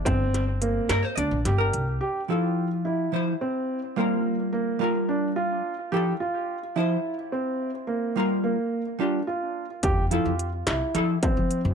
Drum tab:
HH |xxxxxxx|-------|-------|-------|
SD |-o-o-o-|-------|-------|-------|
BD |o------|-------|-------|-------|

HH |-------|xxxxxxx|
SD |-------|---oo--|
BD |-------|o----o-|